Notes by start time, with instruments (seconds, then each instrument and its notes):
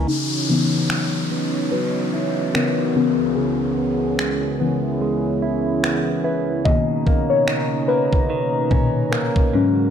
Already playing: clean electric guitar E3 A#3 C#4, synth keys G#5
0.08 clean electric guitar C#3, analog synth pad E3 C#4 F#4 C#5 D#5, synth keys D#4, downlifter
0.49 synth keys C#3 E3 B3, clean electric guitar B3
0.90 clean electric guitar F#3, finger snap
1.31 clean electric guitar B3
1.72 clean electric guitar F#3, synth keys B4
2.13 clean electric guitar E4
2.54 synth keys C#3 E3 B3 A#4, clean electric guitar B3, finger snap
2.95 analog synth pad C#2 G#4, synth keys C#3 E3 B3, clean electric guitar C#3
3.36 clean electric guitar C#3, synth keys G#4
3.78 clean electric guitar B3
4.19 clean electric guitar G#3, finger snap
4.60 synth keys C#3 E3 B3, clean electric guitar B3, analog synth pad E4
5.01 clean electric guitar G#3
5.42 clean electric guitar E4
5.83 clean electric guitar B3, finger snap
6.24 clean electric guitar E4, synth keys B4
6.65 clean electric guitar B2, synth keys B2 D#3 A#3 D#5, analog synth pad C#3 D#4 A#5, kick
7.07 clean electric guitar A#3, kick
7.30 synth keys C#5
7.48 clean electric guitar D#3, finger snap
7.88 clean electric guitar A#3, synth keys B4
8.13 kick
8.30 clean electric guitar D#3
8.71 synth keys A#2 B2 D#3, clean electric guitar C#4, kick
9.11 clean electric guitar A#3, synth keys A#4, finger snap
9.36 kick
9.53 clean electric guitar G#2, synth keys G#2 F#3 C#4, analog synth pad C#3 G#3 F#4